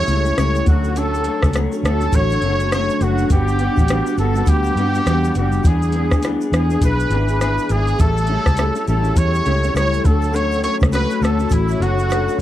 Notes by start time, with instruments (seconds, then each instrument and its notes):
Already playing: ambient pad A4 G5 C#6, trumpet C#5
0.07 fingered electric bass C#2, clean electric guitar A2 G3 C#4 E4, closed hi-hat, shaker
0.24 clean electric guitar G3 C#4 E4, shaker
0.36 fingered electric bass C#2, clean electric guitar A2 G3 C#4 E4, trumpet C#5, cross-stick, closed hi-hat, shaker
0.55 shaker
0.65 fingered electric bass D2, clean electric guitar D3 F#3 A3 C#4, ambient pad D4 F#4, trumpet F#4, kick, closed hi-hat, shaker
0.84 shaker
0.95 clean electric guitar D3 F#3 A3 C#4, trumpet A4, closed hi-hat, shaker
1.14 shaker
1.23 clean electric guitar D3 F#3 A3 C#4, closed hi-hat, shaker
1.42 fingered electric bass C#2, clean electric guitar F#3 A3 C#4, kick, cross-stick, shaker
1.53 clean electric guitar D3 F#3, cross-stick, closed hi-hat, shaker
1.56 clean electric guitar A3 C#4, shaker
1.72 clean electric guitar C#4, shaker
1.74 clean electric guitar F#3 A3, shaker
1.83 fingered electric bass D2, clean electric guitar D3 F#3 A3 C#4, trumpet A4, cross-stick, closed hi-hat, shaker
2.01 clean electric guitar A3 C#4, shaker
2.05 clean electric guitar F#3
2.12 fingered electric bass A1, clean electric guitar D3 F#3 A3, trumpet C#5, kick, closed hi-hat, shaker
2.17 clean electric guitar C#4
2.30 shaker
2.32 shaker
2.41 fingered electric bass F#1, clean electric guitar D3 F#3 A3, closed hi-hat, shaker
2.46 clean electric guitar C#4
2.60 clean electric guitar F#3 A3 C#4, shaker
2.72 clean electric guitar D3 F#3 A3 C#4, trumpet C#5, cross-stick, closed hi-hat, shaker
2.90 shaker
3.01 fingered electric bass F#1, clean electric guitar D3 F#3 A3 C#4, trumpet F#4, closed hi-hat, shaker
3.18 shaker
3.30 fingered electric bass G1, clean electric guitar G3 B3 D4 F#4, ambient pad G3 F#5 B5, trumpet G4, kick, closed hi-hat, shaker
3.48 shaker
3.59 clean electric guitar G3 B3 D4 F#4, closed hi-hat, shaker
3.77 fingered electric bass A1, clean electric guitar D4 F#4, kick, shaker
3.78 clean electric guitar B3, shaker
3.88 clean electric guitar G3 B3 D4 F#4, cross-stick, closed hi-hat, shaker
4.06 clean electric guitar D4 F#4, shaker
4.11 clean electric guitar B3
4.18 fingered electric bass G1, clean electric guitar G3 B3 D4 F#4, trumpet A4, closed hi-hat, shaker
4.35 clean electric guitar B3 D4 F#4, shaker
4.46 fingered electric bass D2, trumpet G4, kick, closed hi-hat, shaker
4.64 shaker
4.66 shaker
4.76 fingered electric bass G2, clean electric guitar G3 B3 D4, closed hi-hat, shaker
4.80 clean electric guitar F#4
4.94 clean electric guitar B3 D4 F#4, shaker
5.06 fingered electric bass E2, clean electric guitar G3 B3 D4 F#4, cross-stick, closed hi-hat, shaker
5.24 shaker
5.35 fingered electric bass F#1, clean electric guitar G3 B3 D4 F#4, trumpet G4, closed hi-hat, shaker
5.52 shaker
5.64 fingered electric bass E2, clean electric guitar E3 B3 D4 G#4, ambient pad G#4 E5 D6, trumpet G#4, kick, closed hi-hat, shaker
5.82 shaker
5.92 clean electric guitar E3 B3 D4 G#4, closed hi-hat, shaker
6.11 fingered electric bass D2, clean electric guitar B3 D4 G#4, kick, cross-stick, shaker
6.23 clean electric guitar E3 B3 D4 G#4, cross-stick, closed hi-hat, shaker
6.40 clean electric guitar B3 D4 G#4, shaker
6.51 fingered electric bass E2, clean electric guitar E3 B3 D4 G#4, trumpet G#4, cross-stick, closed hi-hat, shaker
6.69 clean electric guitar B3 D4 G#4, shaker
6.81 fingered electric bass B1, clean electric guitar E3 B3 D4 G#4, trumpet B4, kick, closed hi-hat, shaker
7.00 shaker
7.09 fingered electric bass G#1, clean electric guitar E3 B3 D4 G#4, closed hi-hat, shaker
7.28 clean electric guitar B3 D4 G#4, shaker
7.40 clean electric guitar E3 B3 D4 G#4, trumpet B4, cross-stick, closed hi-hat, shaker
7.58 shaker
7.69 fingered electric bass G#1, clean electric guitar E3 B3 D4 G#4, trumpet G#4, closed hi-hat, shaker
7.88 shaker
7.98 fingered electric bass A1, clean electric guitar A2 G3 C#4 E4, ambient pad A4 G5 C#6, trumpet A4, kick, closed hi-hat, shaker
8.17 shaker
8.27 clean electric guitar A2 G3 C#4 E4, closed hi-hat, shaker
8.46 fingered electric bass C#2, clean electric guitar E4, kick, cross-stick, shaker
8.47 clean electric guitar G3 C#4, shaker
8.57 clean electric guitar A2 G3 C#4 E4, cross-stick, closed hi-hat, shaker
8.73 clean electric guitar G3 C#4 E4, shaker
8.86 fingered electric bass A1, clean electric guitar A2 G3 C#4 E4, trumpet A4, closed hi-hat, shaker
9.02 clean electric guitar G3 C#4 E4, shaker
9.16 fingered electric bass E2, trumpet C#5, kick, closed hi-hat, shaker
9.34 shaker
9.44 fingered electric bass C#2, clean electric guitar A2 G3 C#4 E4, closed hi-hat, shaker
9.63 clean electric guitar G3 C#4 E4, shaker
9.74 fingered electric bass C#2, clean electric guitar A2 G3 C#4 E4, trumpet C#5, cross-stick, closed hi-hat, shaker
9.93 shaker
10.03 fingered electric bass D2, clean electric guitar D3 F#3 A3 C#4, ambient pad F#4 C#5, trumpet A4, kick, closed hi-hat, shaker
10.22 shaker
10.24 shaker
10.32 clean electric guitar D3 F#3 A3 C#4, trumpet C#5, closed hi-hat, shaker
10.36 shaker
10.51 shaker
10.54 shaker
10.62 clean electric guitar D3 F#3 A3 C#4, trumpet C#5, closed hi-hat, shaker
10.80 fingered electric bass C#2, clean electric guitar F#3 A3 C#4, kick, cross-stick, shaker
10.84 shaker
10.91 clean electric guitar D3 F#3 A3 C#4, trumpet B4, cross-stick, closed hi-hat, shaker
11.08 clean electric guitar F#3 A3 C#4, shaker
11.19 fingered electric bass D2, clean electric guitar D3 F#3 A3 C#4, trumpet A4, shaker
11.24 cross-stick, closed hi-hat, shaker
11.38 clean electric guitar F#3 A3 C#4, shaker
11.50 fingered electric bass A1, kick, closed hi-hat, shaker
11.52 trumpet E4, shaker
11.68 shaker
11.71 shaker
11.79 fingered electric bass F#1, clean electric guitar D3 F#3 A3 C#4, trumpet F#4, closed hi-hat, shaker
11.97 clean electric guitar F#3 A3 C#4, shaker
12.09 clean electric guitar D3 F#3 A3 C#4, cross-stick, closed hi-hat, shaker
12.12 shaker
12.28 shaker
12.37 fingered electric bass F#1, clean electric guitar D3 F#3 A3